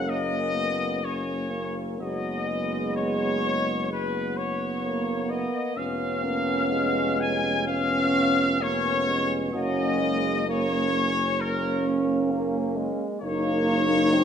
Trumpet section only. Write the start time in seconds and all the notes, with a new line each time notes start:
0.09 D#5
1.05 C#5
2.02 D#5
2.97 C#5
3.92 B4
4.38 C#5
5.30 D#5
5.78 F5
7.20 G#5
7.68 F5
8.62 C#5
9.54 D#5
10.50 C#5
11.41 A#4
13.22 C#5